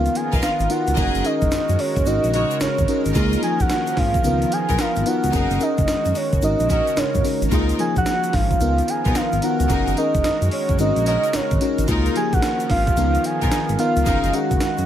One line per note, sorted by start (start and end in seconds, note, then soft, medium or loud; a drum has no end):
0.00 0.96 D#3 medium
0.00 0.64 B3 medium
0.00 0.96 B3 medium
0.00 0.64 D#4 medium
0.00 0.64 F4 medium
0.00 0.96 F4 medium
0.00 0.65 A#4 medium
0.00 0.96 A#4 medium
0.00 0.17 F5 loud
0.06 closed hi-hat soft
0.06 shaker soft
0.15 0.43 G#5 loud
0.15 closed hi-hat medium
0.15 tambourine medium
0.32 0.40 B1 medium
0.32 0.45 A#4 medium
0.32 0.45 B4 medium
0.32 0.46 D#5 medium
0.32 0.46 F5 medium
0.32 kick loud
0.32 closed hi-hat soft
0.32 shaker medium
0.42 0.49 G#1 soft
0.42 0.72 F5 loud
0.42 snare loud
0.42 closed hi-hat medium
0.42 tambourine medium
0.42 shaker medium
0.60 0.67 G#1 medium
0.60 closed hi-hat medium
0.60 shaker soft
0.70 0.95 B3 medium
0.70 0.95 D#4 medium
0.70 0.96 F4 medium
0.70 0.96 A#4 medium
0.70 1.27 F#5 loud
0.70 closed hi-hat medium
0.70 tambourine medium
0.87 0.95 C#2 medium
0.87 closed hi-hat medium
0.87 shaker medium
0.97 1.10 F#1 loud
0.97 2.05 D#3 medium
0.97 3.13 G#3 medium
0.97 1.23 C#4 medium
0.97 1.23 D#4 medium
0.97 3.13 F#4 medium
0.97 1.23 G#4 loud
0.97 1.23 G#4 medium
0.97 1.23 A#4 medium
0.97 6.39 A#4 medium
0.97 1.23 A#4 medium
0.97 1.23 D#5 loud
0.97 kick loud
0.97 closed hi-hat medium
0.97 tambourine medium
0.97 shaker medium
1.14 1.22 F#1 loud
1.14 closed hi-hat medium
1.14 shaker soft
1.24 2.05 C#4 medium
1.24 2.05 D#4 medium
1.24 2.07 G#4 medium
1.24 2.06 A#4 medium
1.24 1.81 D#5 loud
1.24 closed hi-hat medium
1.24 tambourine medium
1.42 1.49 F#1 medium
1.42 kick loud
1.42 closed hi-hat medium
1.42 shaker medium
1.51 1.58 F#2 soft
1.51 snare loud
1.51 closed hi-hat medium
1.51 tambourine medium
1.51 shaker medium
1.69 1.77 F#2 medium
1.69 closed hi-hat soft
1.69 shaker medium
1.79 2.08 C#5 medium
1.79 open hi-hat medium
1.96 2.04 F#1 medium
1.96 kick loud
1.96 closed hi-hat medium
1.96 shaker soft
2.06 2.19 G#1 loud
2.06 3.14 C#3 medium
2.06 2.82 C#4 medium
2.06 2.82 D#4 medium
2.06 2.83 F#4 medium
2.06 2.83 A#4 medium
2.06 2.33 D#5 medium
2.06 closed hi-hat medium
2.06 tambourine medium
2.06 shaker medium
2.24 2.45 A#1 medium
2.24 closed hi-hat medium
2.24 shaker soft
2.33 2.52 F#4 medium
2.33 2.53 A#4 medium
2.33 2.53 C#5 medium
2.33 2.59 D#5 medium
2.33 closed hi-hat medium
2.33 tambourine medium
2.51 closed hi-hat soft
2.51 shaker medium
2.60 2.68 G#1 soft
2.60 3.03 C#5 medium
2.60 snare loud
2.60 closed hi-hat medium
2.60 tambourine loud
2.60 shaker medium
2.78 2.86 G#1 loud
2.78 kick loud
2.78 closed hi-hat medium
2.78 shaker soft
2.88 3.13 C#4 medium
2.88 3.14 D#4 medium
2.88 3.14 F#4 medium
2.88 3.14 A#4 medium
2.88 closed hi-hat medium
2.88 tambourine medium
3.05 3.13 G#1 medium
3.05 closed hi-hat medium
3.05 shaker medium
3.15 3.36 C#2 loud
3.15 5.31 D#3 medium
3.15 5.31 F3 medium
3.15 3.41 A#3 loud
3.15 4.23 C#4 medium
3.15 3.41 D#4 medium
3.15 3.41 F4 loud
3.15 3.41 F4 medium
3.15 3.41 G#4 loud
3.15 3.41 A#4 medium
3.15 3.41 D#5 loud
3.15 kick loud
3.15 closed hi-hat medium
3.15 tambourine medium
3.15 shaker medium
3.32 closed hi-hat medium
3.32 shaker medium
3.42 4.25 F3 medium
3.42 4.24 A#3 medium
3.42 4.23 D#4 medium
3.42 4.25 G#4 medium
3.42 3.62 G#5 loud
3.42 closed hi-hat medium
3.42 tambourine medium
3.60 3.67 A#1 medium
3.60 4.00 F#5 loud
3.60 kick medium
3.60 closed hi-hat medium
3.60 shaker medium
3.69 snare loud
3.69 closed hi-hat medium
3.69 tambourine medium
3.69 shaker medium
3.87 closed hi-hat medium
3.87 shaker medium
3.97 4.18 G#1 medium
3.97 4.54 F5 loud
3.97 kick loud
3.97 snare medium
3.97 open hi-hat medium
4.14 kick loud
4.14 closed hi-hat medium
4.14 shaker soft
4.24 4.45 C#2 loud
4.24 5.00 B3 medium
4.24 5.32 B3 medium
4.24 5.00 D#4 medium
4.24 5.01 F4 medium
4.24 5.01 A#4 medium
4.24 closed hi-hat medium
4.24 tambourine medium
4.24 shaker medium
4.42 closed hi-hat medium
4.42 shaker soft
4.52 4.82 G#5 loud
4.52 closed hi-hat medium
4.52 tambourine medium
4.69 4.77 B1 medium
4.69 4.82 B3 medium
4.69 4.82 D#4 medium
4.69 4.82 F4 medium
4.69 4.82 A#4 loud
4.69 kick medium
4.69 closed hi-hat soft
4.69 shaker medium
4.78 4.86 G#1 soft
4.78 5.09 F5 loud
4.78 snare loud
4.78 closed hi-hat medium
4.78 tambourine medium
4.78 shaker medium
4.96 5.04 G#1 medium
4.96 closed hi-hat medium
4.96 shaker soft
5.06 5.31 B3 medium
5.06 5.32 D#4 medium
5.06 5.32 F4 medium
5.06 5.32 A#4 medium
5.06 5.64 F#5 loud
5.06 closed hi-hat medium
5.06 tambourine medium
5.24 5.31 C#2 medium
5.24 closed hi-hat medium
5.24 shaker medium
5.33 5.47 F#1 loud
5.33 6.41 D#3 medium
5.33 6.42 G#3 medium
5.33 5.59 C#4 medium
5.33 5.59 D#4 loud
5.33 5.59 D#4 medium
5.33 7.50 F#4 medium
5.33 5.59 G#4 medium
5.33 5.59 A#4 loud
5.33 5.59 A#4 medium
5.33 kick loud
5.33 closed hi-hat medium
5.33 tambourine medium
5.33 shaker medium
5.51 5.58 F#1 loud
5.51 closed hi-hat medium
5.51 shaker soft
5.60 6.41 C#4 medium
5.60 6.42 D#4 medium
5.60 6.43 G#4 medium
5.60 6.42 A#4 medium
5.60 6.18 D#5 loud
5.60 closed hi-hat medium
5.60 tambourine medium
5.60 shaker medium
5.78 5.86 F#1 medium
5.78 kick loud
5.78 closed hi-hat medium
5.78 shaker medium
5.88 5.95 F#2 soft
5.88 snare loud
5.88 closed hi-hat medium
5.88 tambourine medium
5.88 shaker medium
6.05 6.13 F#2 medium
6.05 closed hi-hat medium
6.05 shaker medium
6.15 6.43 C#5 medium
6.15 open hi-hat medium
6.15 shaker medium
6.33 6.40 F#1 medium
6.33 kick loud
6.33 closed hi-hat medium
6.33 shaker soft
6.42 6.56 G#1 loud
6.42 7.50 C#3 medium
6.42 7.51 G#3 medium
6.42 7.18 C#4 medium
6.42 7.19 D#4 medium
6.42 7.19 F#4 medium
6.42 14.86 A#4 medium
6.42 7.19 A#4 medium
6.42 6.69 D#5 loud
6.42 closed hi-hat medium
6.42 tambourine medium
6.42 shaker medium
6.60 6.81 A#1 medium
6.60 closed hi-hat medium
6.60 shaker soft
6.70 6.89 C#4 medium
6.70 6.89 F#4 medium
6.70 6.89 A#4 medium
6.70 7.00 D#5 loud
6.70 kick loud
6.70 closed hi-hat medium
6.70 tambourine medium
6.70 shaker medium
6.87 closed hi-hat soft
6.87 shaker medium
6.97 7.04 G#1 medium
6.97 7.42 C#5 medium
6.97 snare loud
6.97 closed hi-hat medium
6.97 tambourine loud
6.97 shaker medium
7.15 7.22 G#1 loud
7.15 kick loud
7.15 closed hi-hat medium
7.15 shaker soft
7.24 7.50 C#4 medium
7.24 7.50 D#4 medium
7.24 7.50 F#4 medium
7.24 7.50 A#4 medium
7.24 open hi-hat medium
7.24 tambourine medium
7.24 shaker medium
7.42 7.49 G#1 medium
7.42 closed hi-hat medium
7.42 shaker medium
7.51 7.72 C#2 loud
7.51 10.76 D#3 medium
7.51 9.68 F3 medium
7.51 7.77 A#3 medium
7.51 8.60 C#4 medium
7.51 7.77 D#4 medium
7.51 7.77 F4 medium
7.51 7.77 G#4 loud
7.51 7.77 A#4 loud
7.51 kick loud
7.51 closed hi-hat medium
7.51 tambourine medium
7.51 shaker medium
7.69 closed hi-hat medium
7.69 shaker medium
7.79 8.61 F3 medium
7.79 8.61 A#3 medium
7.79 8.60 D#4 medium
7.79 8.61 G#4 medium
7.79 7.96 G#5 loud
7.79 closed hi-hat medium
7.79 tambourine medium
7.96 8.04 A#1 medium
7.96 8.36 F#5 loud
7.96 kick loud
7.96 closed hi-hat medium
7.96 shaker medium
8.06 snare loud
8.06 closed hi-hat medium
8.06 tambourine medium
8.06 shaker medium
8.24 closed hi-hat soft
8.24 shaker medium
8.33 8.54 G#1 medium
8.33 8.91 F5 loud
8.33 kick loud
8.33 snare medium
8.33 open hi-hat medium
8.51 kick loud
8.51 closed hi-hat medium
8.51 shaker soft
8.61 8.81 C#2 loud
8.61 9.37 B3 medium
8.61 9.69 B3 medium
8.61 9.37 D#4 medium
8.61 9.37 F4 medium
8.61 9.37 A#4 medium
8.61 closed hi-hat medium
8.61 tambourine medium
8.61 shaker medium
8.78 closed hi-hat medium
8.78 shaker soft
8.88 9.18 G#5 loud
8.88 closed hi-hat medium
8.88 tambourine medium
9.05 9.13 B1 medium
9.05 9.18 B3 medium
9.05 9.18 D#4 medium
9.05 9.18 F4 medium
9.05 9.18 A#4 medium
9.05 kick medium
9.05 closed hi-hat soft
9.05 shaker medium
9.15 9.22 G#1 soft
9.15 9.45 F5 loud
9.15 snare loud
9.15 closed hi-hat medium
9.15 tambourine medium
9.15 shaker medium
9.32 9.40 G#1 medium
9.32 closed hi-hat medium
9.32 shaker soft
9.42 9.68 B3 medium
9.42 9.68 D#4 medium
9.42 9.68 F4 medium
9.42 9.68 A#4 medium
9.42 9.97 F#5 loud
9.42 closed hi-hat medium
9.42 tambourine medium
9.60 9.67 C#2 medium
9.60 closed hi-hat medium
9.60 shaker medium
9.69 9.83 F#1 loud
9.69 11.86 G#3 medium
9.69 9.95 C#4 medium
9.69 9.95 D#4 medium
9.69 11.86 F#4 medium
9.69 9.95 G#4 medium
9.69 9.96 G#4 medium
9.69 9.96 A#4 loud
9.69 kick loud
9.69 closed hi-hat medium
9.69 tambourine medium
9.69 shaker medium
9.87 9.95 F#1 loud
9.87 closed hi-hat medium
9.87 shaker soft
9.97 10.78 C#4 medium
9.97 10.78 D#4 medium
9.97 10.79 G#4 medium
9.97 10.79 A#4 medium
9.97 10.48 D#5 loud
9.97 closed hi-hat medium
9.97 tambourine medium
10.15 10.22 F#1 medium
10.15 kick loud
10.15 closed hi-hat medium
10.15 shaker medium
10.24 10.31 F#2 soft
10.24 snare loud
10.24 closed hi-hat medium
10.24 tambourine medium
10.24 shaker medium
10.42 10.49 F#2 medium
10.42 closed hi-hat medium
10.42 shaker medium
10.51 10.78 C#5 medium
10.51 open hi-hat medium
10.69 10.77 F#1 loud
10.69 kick loud
10.69 closed hi-hat medium
10.69 shaker soft
10.79 10.92 G#1 loud
10.79 11.87 C#3 medium
10.79 11.55 C#4 medium
10.79 11.55 D#4 medium
10.79 11.55 F#4 medium
10.79 11.56 A#4 medium
10.79 11.05 D#5 loud
10.79 closed hi-hat medium
10.79 tambourine medium
10.79 shaker medium
10.96 11.17 A#1 medium
10.96 closed hi-hat medium
10.96 shaker soft
11.06 11.25 C#4 medium
11.06 11.25 F#4 medium
11.06 11.25 A#4 medium
11.06 11.37 D#5 loud
11.06 closed hi-hat medium
11.06 tambourine medium
11.23 closed hi-hat soft
11.23 shaker medium
11.33 11.40 G#1 soft
11.33 11.79 C#5 medium
11.33 snare loud
11.33 closed hi-hat medium
11.33 tambourine loud
11.33 shaker medium
11.51 11.59 G#1 loud
11.51 kick loud
11.51 closed hi-hat medium
11.51 shaker soft
11.61 11.86 C#4 medium
11.61 11.86 D#4 medium
11.61 11.87 F#4 medium
11.61 11.87 A#4 medium
11.61 closed hi-hat medium
11.61 tambourine medium
11.78 11.86 G#1 medium
11.78 closed hi-hat medium
11.78 shaker medium
11.88 12.09 C#2 loud
11.88 14.86 D#3 medium
11.88 14.04 F3 medium
11.88 12.13 A#3 loud
11.88 12.96 C#4 medium
11.88 12.14 D#4 medium
11.88 12.13 D#4 medium
11.88 12.14 F4 medium
11.88 12.14 G#4 loud
11.88 12.14 A#4 loud
11.88 kick loud
11.88 closed hi-hat medium
11.88 tambourine medium
11.88 shaker medium
12.06 closed hi-hat medium
12.06 shaker soft
12.15 12.97 F3 medium
12.15 12.97 A#3 medium
12.15 12.96 D#4 medium
12.15 12.24 G4 medium
12.15 12.35 G#5 loud
12.15 closed hi-hat medium
12.15 tambourine medium
12.23 13.01 G#4 medium
12.33 12.40 A#1 medium
12.33 12.70 F#5 loud
12.33 kick loud
12.33 closed hi-hat medium
12.33 shaker medium
12.42 snare loud
12.42 closed hi-hat medium
12.42 tambourine medium
12.42 shaker medium
12.60 closed hi-hat medium
12.60 shaker medium
12.70 12.91 G#1 medium
12.70 13.27 F5 loud
12.70 kick loud
12.70 snare medium
12.70 open hi-hat medium
12.87 kick loud
12.87 closed hi-hat medium
12.87 shaker soft
12.97 13.18 C#2 loud
12.97 13.73 B3 medium
12.97 14.05 B3 medium
12.97 13.73 D#4 medium
12.97 13.73 F4 medium
12.97 13.74 A#4 medium
12.97 closed hi-hat medium
12.97 tambourine medium
12.97 shaker medium
13.15 closed hi-hat soft
13.15 shaker soft
13.24 13.79 G#5 loud
13.24 closed hi-hat medium
13.24 tambourine medium
13.42 13.49 B1 medium
13.42 13.55 B3 medium
13.42 13.55 D#4 medium
13.42 13.55 F4 medium
13.42 13.55 A#4 medium
13.42 kick medium
13.42 closed hi-hat soft
13.42 shaker medium
13.51 13.59 G#1 soft
13.51 snare loud
13.51 closed hi-hat medium
13.51 tambourine loud
13.51 shaker medium
13.69 13.77 G#1 loud
13.69 closed hi-hat medium
13.69 shaker soft
13.79 14.04 B3 medium
13.79 14.04 D#4 medium
13.79 14.05 F4 medium
13.79 14.05 A#4 medium
13.79 14.36 F5 loud
13.79 closed hi-hat medium
13.79 tambourine medium
13.96 14.04 C#2 loud
13.96 closed hi-hat medium
13.96 shaker medium
14.06 14.20 F#1 loud
14.06 14.86 G#3 medium
14.06 14.31 C#4 medium
14.06 14.32 D#4 loud
14.06 14.32 D#4 medium
14.06 14.86 F#4 medium
14.06 14.32 G#4 medium
14.06 14.32 A#4 loud
14.06 14.32 A#4 medium
14.06 kick loud
14.06 closed hi-hat medium
14.06 tambourine medium
14.06 shaker medium
14.24 14.31 F#1 loud
14.24 closed hi-hat medium
14.24 shaker soft
14.33 14.86 C#4 medium
14.33 14.86 D#4 medium
14.33 14.86 G#4 medium
14.33 14.86 A#4 medium
14.33 14.86 F#5 loud
14.33 closed hi-hat medium
14.33 tambourine medium
14.51 14.58 F#1 medium
14.51 kick loud
14.51 closed hi-hat medium
14.51 shaker medium
14.60 14.68 F#2 soft
14.60 snare loud
14.60 closed hi-hat medium
14.60 tambourine medium
14.60 shaker medium
14.78 14.86 F#2 loud
14.78 closed hi-hat medium
14.78 shaker soft